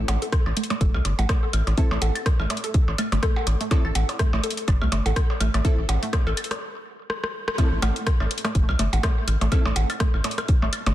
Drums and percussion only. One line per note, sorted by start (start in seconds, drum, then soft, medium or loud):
0.08 closed hi-hat medium
0.08 percussion blips medium
0.22 closed hi-hat soft
0.32 kick loud
0.32 cross-stick medium
0.32 closed hi-hat soft
0.46 claves medium
0.46 percussion blips soft
0.57 closed hi-hat medium
0.63 closed hi-hat soft
0.70 closed hi-hat soft
0.70 percussion blips medium
0.81 kick loud
0.81 closed hi-hat soft
0.94 percussion blips medium
1.05 closed hi-hat medium
1.05 percussion blips soft
1.19 closed hi-hat soft
1.19 percussion blips medium
1.29 kick loud
1.29 cross-stick medium
1.29 closed hi-hat soft
1.29 claves medium
1.29 percussion blips medium
1.53 closed hi-hat medium
1.53 percussion blips medium
1.67 closed hi-hat soft
1.67 percussion blips soft
1.78 kick loud
1.78 closed hi-hat medium
1.91 percussion blips medium
2.02 closed hi-hat medium
2.02 percussion blips medium
2.15 closed hi-hat soft
2.15 claves medium
2.26 kick loud
2.26 cross-stick medium
2.26 closed hi-hat medium
2.26 percussion blips soft
2.40 percussion blips medium
2.50 closed hi-hat medium
2.50 percussion blips medium
2.57 closed hi-hat soft
2.64 closed hi-hat soft
2.74 kick loud
2.74 closed hi-hat soft
2.88 percussion blips soft
2.98 closed hi-hat medium
2.98 claves medium
2.98 percussion blips medium
3.12 closed hi-hat soft
3.12 percussion blips medium
3.23 kick loud
3.23 cross-stick medium
3.23 closed hi-hat medium
3.36 percussion blips medium
3.47 closed hi-hat medium
3.47 percussion blips soft
3.61 closed hi-hat soft
3.71 kick loud
3.71 closed hi-hat medium
3.71 percussion blips medium
3.85 claves medium
3.95 closed hi-hat medium
3.95 percussion blips medium
4.09 closed hi-hat soft
4.09 percussion blips soft
4.19 kick loud
4.19 cross-stick medium
4.19 closed hi-hat medium
4.33 percussion blips medium
4.44 closed hi-hat medium
4.50 closed hi-hat soft
4.57 closed hi-hat soft
4.68 kick loud
4.68 closed hi-hat medium
4.68 claves medium
4.68 percussion blips soft
4.82 percussion blips medium
4.92 closed hi-hat medium
4.92 percussion blips medium
5.06 closed hi-hat soft
5.06 percussion blips medium
5.16 kick loud
5.16 cross-stick medium
5.16 closed hi-hat medium
5.30 percussion blips soft
5.40 closed hi-hat medium
5.40 percussion blips medium
5.54 closed hi-hat soft
5.54 claves medium
5.54 percussion blips medium
5.65 kick loud
5.65 closed hi-hat medium
5.89 closed hi-hat medium
5.89 percussion blips medium
5.89 percussion blips soft
6.03 closed hi-hat soft
6.13 kick loud
6.13 cross-stick medium
6.13 closed hi-hat medium
6.13 percussion blips medium
6.27 percussion blips medium
6.37 closed hi-hat medium
6.37 claves medium
6.44 closed hi-hat medium
6.51 cross-stick medium
6.51 closed hi-hat soft
6.51 percussion blips soft
7.10 cross-stick medium
7.24 cross-stick medium
7.48 cross-stick medium
7.58 kick loud
7.58 closed hi-hat medium
7.58 percussion blips soft
7.82 closed hi-hat medium
7.82 percussion blips loud
7.82 percussion blips medium
7.96 closed hi-hat soft
8.07 kick loud
8.07 cross-stick loud
8.07 closed hi-hat medium
8.20 claves medium
8.20 percussion blips soft
8.31 closed hi-hat medium
8.38 closed hi-hat medium
8.45 cross-stick medium
8.45 closed hi-hat soft
8.45 percussion blips soft
8.45 percussion blips medium
8.55 kick loud
8.55 closed hi-hat medium
8.69 percussion blips medium
8.79 closed hi-hat medium
8.79 percussion blips soft
8.93 closed hi-hat soft
8.93 percussion blips medium
9.03 kick loud
9.03 cross-stick loud
9.03 closed hi-hat medium
9.03 claves medium
9.03 percussion blips soft
9.03 percussion blips medium
9.28 closed hi-hat medium
9.28 percussion blips soft
9.41 closed hi-hat soft
9.41 percussion blips soft
9.52 kick loud
9.52 closed hi-hat soft
9.52 percussion blips medium
9.65 percussion blips medium
9.76 closed hi-hat medium
9.76 percussion blips medium
9.90 closed hi-hat soft
9.90 claves medium
9.90 percussion blips soft
10.00 kick loud
10.00 cross-stick medium
10.00 closed hi-hat medium
10.00 percussion blips soft
10.14 percussion blips soft
10.24 closed hi-hat medium
10.24 percussion blips medium
10.31 closed hi-hat soft
10.38 cross-stick medium
10.38 closed hi-hat soft
10.38 percussion blips medium
10.48 kick loud
10.48 closed hi-hat medium
10.62 percussion blips soft
10.73 closed hi-hat loud
10.73 claves medium
10.73 percussion blips soft
10.86 closed hi-hat soft
10.86 percussion blips medium